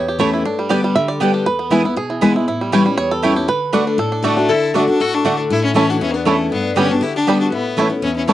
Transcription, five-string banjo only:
Already playing: C#5
0.08 G4
0.20 C#5
0.34 E4
0.46 D4
0.59 G3
0.70 D5
0.84 G3
0.96 E5
1.08 D5
1.21 D4
1.34 G4
1.46 B4
1.59 B3
1.71 E4
1.85 E4
1.97 G#4
2.10 E3
2.22 G#3
2.36 E4
2.48 E4
2.61 G3
2.73 B4
2.86 G3
2.98 C#5
3.11 A4
3.23 E4
3.36 G4
3.49 B4
3.73 D4
3.87 D4
3.99 A4
4.12 D4
4.24 A3
4.37 D4
4.75 A3 D4
5.25 A3 D4
5.76 A3 C#4 E4
6.27 A3 C#4 E4
6.78 G3 B3 D4
7.29 G3 B3 D4
7.79 A3 C#4 E4
8.29 A3 C#4

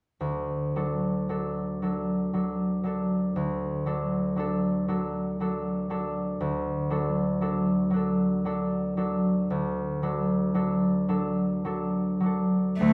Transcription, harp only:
0.21 D2
0.76 F#3 D4 A4
1.29 F#3 D4 A4
1.82 F#3 D4 A4
2.34 F#3 D4 A4
2.83 F#3 D4 A4
3.36 D2
3.86 F#3 D4 A4
4.36 F#3 D4 A4
4.88 F#3 D4 A4
5.40 F#3 D4 A4
5.90 F#3 D4 A4
6.41 D2
6.90 F#3 D4 A4
7.41 F#3 D4 A4
7.90 F#3 D4
7.96 A4
8.45 F#3 D4 A4
8.97 F#3 D4 A4
9.50 D2
10.02 F#3 D4 A4
10.54 F#3 D4 A4
11.09 F#3 D4 A4
11.65 F#3 D4 A4
12.20 F#3 D4
12.26 A4
12.81 D2

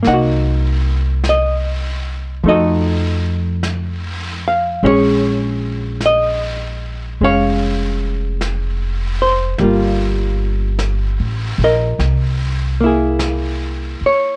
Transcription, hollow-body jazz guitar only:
0.03 A#3
0.08 D#4 D#5 F#5
0.14 F#4
1.29 D#5
2.44 F3 A3
2.48 D#4 F#4 A4 D#5
4.48 F5
4.84 G#3 C#4 D#4 C#5
4.88 G#4
6.06 D#5
7.21 G#3 C#4 C#5 F5
9.22 C5
9.60 G3 A#3 F4
11.64 A#4 D#5
12.81 A#3 E4
12.86 G#4
14.06 C#5

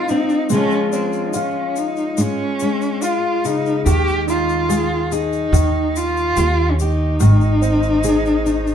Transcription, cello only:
Already playing: F4
0.09 D#4
0.52 C#4
0.93 C4
1.29 D#4
1.36 C#4
1.78 D#4
2.21 C#4
3.04 F4
3.46 D#4
3.88 G4
4.29 F4
5.12 D#4
5.97 F4
6.71 C#4
6.79 D#4

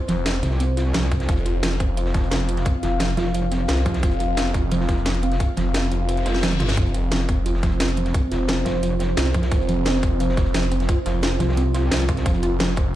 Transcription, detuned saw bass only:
0.09 F1
1.29 F1
2.83 F1
3.69 C2
4.03 F1
5.57 F1
5.92 F1
6.26 F1
6.60 G1
6.77 F1
8.32 F1
9.17 C2
9.52 F1
11.06 F1
12.26 F1

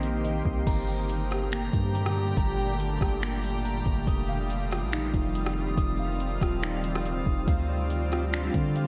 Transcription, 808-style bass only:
Already playing: A#1
0.46 C2
0.67 G1
1.73 G2
2.37 G1
3.01 G1
3.86 G1
4.07 F1
4.82 A1
5.14 F1
5.77 F1
6.41 D#1
7.26 F1
7.48 D2
8.54 D3

